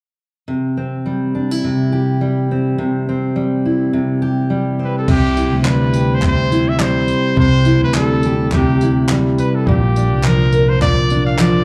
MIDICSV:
0, 0, Header, 1, 5, 480
1, 0, Start_track
1, 0, Key_signature, 0, "major"
1, 0, Tempo, 573614
1, 409, Time_signature, 4, 2, 24, 8
1, 9741, End_track
2, 0, Start_track
2, 0, Title_t, "Trumpet"
2, 0, Program_c, 0, 56
2, 4055, Note_on_c, 0, 71, 67
2, 4157, Note_off_c, 0, 71, 0
2, 4170, Note_on_c, 0, 69, 63
2, 4258, Note_off_c, 0, 69, 0
2, 4278, Note_on_c, 0, 67, 90
2, 4663, Note_off_c, 0, 67, 0
2, 4709, Note_on_c, 0, 72, 65
2, 4762, Note_on_c, 0, 71, 93
2, 4775, Note_off_c, 0, 72, 0
2, 5140, Note_on_c, 0, 72, 87
2, 5153, Note_off_c, 0, 71, 0
2, 5230, Note_off_c, 0, 72, 0
2, 5250, Note_on_c, 0, 72, 102
2, 5595, Note_on_c, 0, 76, 89
2, 5607, Note_off_c, 0, 72, 0
2, 5711, Note_on_c, 0, 72, 104
2, 5724, Note_off_c, 0, 76, 0
2, 6181, Note_off_c, 0, 72, 0
2, 6186, Note_on_c, 0, 72, 98
2, 6525, Note_off_c, 0, 72, 0
2, 6561, Note_on_c, 0, 71, 83
2, 6653, Note_off_c, 0, 71, 0
2, 6658, Note_on_c, 0, 69, 87
2, 7101, Note_off_c, 0, 69, 0
2, 7142, Note_on_c, 0, 67, 87
2, 7583, Note_off_c, 0, 67, 0
2, 7853, Note_on_c, 0, 71, 75
2, 7994, Note_on_c, 0, 69, 76
2, 8007, Note_off_c, 0, 71, 0
2, 8094, Note_on_c, 0, 67, 89
2, 8106, Note_off_c, 0, 69, 0
2, 8572, Note_off_c, 0, 67, 0
2, 8578, Note_on_c, 0, 70, 93
2, 8946, Note_on_c, 0, 72, 89
2, 8959, Note_off_c, 0, 70, 0
2, 9047, Note_off_c, 0, 72, 0
2, 9052, Note_on_c, 0, 74, 114
2, 9397, Note_off_c, 0, 74, 0
2, 9424, Note_on_c, 0, 77, 92
2, 9539, Note_on_c, 0, 74, 117
2, 9551, Note_off_c, 0, 77, 0
2, 9741, Note_off_c, 0, 74, 0
2, 9741, End_track
3, 0, Start_track
3, 0, Title_t, "Steel-string acoustic guitar"
3, 0, Program_c, 1, 25
3, 400, Note_on_c, 1, 48, 58
3, 647, Note_on_c, 1, 60, 47
3, 885, Note_on_c, 1, 55, 55
3, 1128, Note_on_c, 1, 62, 44
3, 1265, Note_off_c, 1, 62, 0
3, 1265, Note_on_c, 1, 64, 39
3, 1365, Note_off_c, 1, 48, 0
3, 1374, Note_on_c, 1, 48, 58
3, 1610, Note_on_c, 1, 67, 56
3, 1847, Note_off_c, 1, 55, 0
3, 1850, Note_on_c, 1, 55, 54
3, 2099, Note_off_c, 1, 60, 0
3, 2102, Note_on_c, 1, 60, 46
3, 2319, Note_off_c, 1, 48, 0
3, 2329, Note_on_c, 1, 48, 67
3, 2580, Note_off_c, 1, 60, 0
3, 2583, Note_on_c, 1, 60, 50
3, 2806, Note_off_c, 1, 55, 0
3, 2809, Note_on_c, 1, 55, 51
3, 3048, Note_off_c, 1, 64, 0
3, 3058, Note_on_c, 1, 64, 46
3, 3282, Note_off_c, 1, 48, 0
3, 3292, Note_on_c, 1, 48, 68
3, 3527, Note_off_c, 1, 67, 0
3, 3531, Note_on_c, 1, 67, 59
3, 3762, Note_off_c, 1, 55, 0
3, 3766, Note_on_c, 1, 55, 52
3, 4008, Note_off_c, 1, 60, 0
3, 4011, Note_on_c, 1, 60, 44
3, 4244, Note_off_c, 1, 48, 0
3, 4254, Note_on_c, 1, 48, 77
3, 4487, Note_off_c, 1, 64, 0
3, 4491, Note_on_c, 1, 64, 58
3, 4724, Note_off_c, 1, 55, 0
3, 4727, Note_on_c, 1, 55, 68
3, 4980, Note_off_c, 1, 67, 0
3, 4983, Note_on_c, 1, 67, 60
3, 5199, Note_off_c, 1, 48, 0
3, 5209, Note_on_c, 1, 48, 80
3, 5442, Note_off_c, 1, 64, 0
3, 5452, Note_on_c, 1, 64, 59
3, 5674, Note_off_c, 1, 55, 0
3, 5684, Note_on_c, 1, 55, 63
3, 6151, Note_off_c, 1, 48, 0
3, 6161, Note_on_c, 1, 48, 79
3, 6398, Note_off_c, 1, 64, 0
3, 6408, Note_on_c, 1, 64, 60
3, 6647, Note_off_c, 1, 55, 0
3, 6660, Note_on_c, 1, 55, 61
3, 6896, Note_off_c, 1, 67, 0
3, 6909, Note_on_c, 1, 67, 61
3, 6940, Note_off_c, 1, 60, 0
3, 7126, Note_off_c, 1, 48, 0
3, 7142, Note_on_c, 1, 48, 85
3, 7369, Note_off_c, 1, 64, 0
3, 7385, Note_on_c, 1, 64, 60
3, 7615, Note_off_c, 1, 55, 0
3, 7629, Note_on_c, 1, 55, 67
3, 8103, Note_on_c, 1, 46, 77
3, 8149, Note_off_c, 1, 48, 0
3, 8150, Note_off_c, 1, 64, 0
3, 8152, Note_off_c, 1, 55, 0
3, 8152, Note_off_c, 1, 67, 0
3, 8343, Note_on_c, 1, 62, 62
3, 8588, Note_on_c, 1, 53, 65
3, 8816, Note_on_c, 1, 70, 67
3, 9040, Note_off_c, 1, 46, 0
3, 9050, Note_on_c, 1, 46, 79
3, 9296, Note_off_c, 1, 62, 0
3, 9299, Note_on_c, 1, 62, 62
3, 9527, Note_off_c, 1, 53, 0
3, 9537, Note_on_c, 1, 53, 70
3, 9741, Note_off_c, 1, 46, 0
3, 9741, Note_off_c, 1, 53, 0
3, 9741, Note_off_c, 1, 62, 0
3, 9741, Note_off_c, 1, 70, 0
3, 9741, End_track
4, 0, Start_track
4, 0, Title_t, "Fingered electric bass"
4, 0, Program_c, 2, 33
4, 4251, Note_on_c, 2, 36, 95
4, 4556, Note_off_c, 2, 36, 0
4, 4626, Note_on_c, 2, 38, 86
4, 5899, Note_off_c, 2, 38, 0
4, 6169, Note_on_c, 2, 36, 84
4, 6475, Note_off_c, 2, 36, 0
4, 6538, Note_on_c, 2, 38, 81
4, 7814, Note_off_c, 2, 38, 0
4, 8092, Note_on_c, 2, 34, 88
4, 8471, Note_off_c, 2, 34, 0
4, 8471, Note_on_c, 2, 36, 80
4, 9741, Note_off_c, 2, 36, 0
4, 9741, End_track
5, 0, Start_track
5, 0, Title_t, "Drums"
5, 4252, Note_on_c, 9, 36, 109
5, 4252, Note_on_c, 9, 49, 91
5, 4336, Note_off_c, 9, 36, 0
5, 4336, Note_off_c, 9, 49, 0
5, 4494, Note_on_c, 9, 54, 56
5, 4577, Note_off_c, 9, 54, 0
5, 4725, Note_on_c, 9, 39, 101
5, 4728, Note_off_c, 9, 39, 0
5, 4728, Note_on_c, 9, 39, 70
5, 4812, Note_off_c, 9, 39, 0
5, 4967, Note_on_c, 9, 54, 69
5, 5051, Note_off_c, 9, 54, 0
5, 5205, Note_on_c, 9, 39, 66
5, 5212, Note_on_c, 9, 36, 113
5, 5289, Note_off_c, 9, 39, 0
5, 5296, Note_off_c, 9, 36, 0
5, 5456, Note_on_c, 9, 54, 61
5, 5539, Note_off_c, 9, 54, 0
5, 5684, Note_on_c, 9, 39, 108
5, 5691, Note_off_c, 9, 39, 0
5, 5691, Note_on_c, 9, 39, 86
5, 5774, Note_off_c, 9, 39, 0
5, 5924, Note_on_c, 9, 54, 62
5, 6008, Note_off_c, 9, 54, 0
5, 6170, Note_on_c, 9, 36, 105
5, 6253, Note_off_c, 9, 36, 0
5, 6402, Note_on_c, 9, 54, 57
5, 6486, Note_off_c, 9, 54, 0
5, 6645, Note_on_c, 9, 39, 115
5, 6646, Note_off_c, 9, 39, 0
5, 6646, Note_on_c, 9, 39, 70
5, 6730, Note_off_c, 9, 39, 0
5, 6887, Note_on_c, 9, 54, 64
5, 6970, Note_off_c, 9, 54, 0
5, 7129, Note_on_c, 9, 39, 67
5, 7134, Note_on_c, 9, 36, 119
5, 7212, Note_off_c, 9, 39, 0
5, 7217, Note_off_c, 9, 36, 0
5, 7372, Note_on_c, 9, 54, 58
5, 7455, Note_off_c, 9, 54, 0
5, 7605, Note_on_c, 9, 39, 79
5, 7606, Note_off_c, 9, 39, 0
5, 7606, Note_on_c, 9, 39, 106
5, 7689, Note_off_c, 9, 39, 0
5, 7853, Note_on_c, 9, 54, 58
5, 7937, Note_off_c, 9, 54, 0
5, 8092, Note_on_c, 9, 36, 105
5, 8175, Note_off_c, 9, 36, 0
5, 8336, Note_on_c, 9, 54, 62
5, 8420, Note_off_c, 9, 54, 0
5, 8564, Note_on_c, 9, 39, 76
5, 8569, Note_off_c, 9, 39, 0
5, 8569, Note_on_c, 9, 39, 110
5, 8653, Note_off_c, 9, 39, 0
5, 8808, Note_on_c, 9, 54, 62
5, 8891, Note_off_c, 9, 54, 0
5, 9052, Note_on_c, 9, 36, 122
5, 9053, Note_on_c, 9, 39, 62
5, 9135, Note_off_c, 9, 36, 0
5, 9136, Note_off_c, 9, 39, 0
5, 9291, Note_on_c, 9, 54, 62
5, 9374, Note_off_c, 9, 54, 0
5, 9524, Note_on_c, 9, 39, 111
5, 9534, Note_off_c, 9, 39, 0
5, 9534, Note_on_c, 9, 39, 82
5, 9618, Note_off_c, 9, 39, 0
5, 9741, End_track
0, 0, End_of_file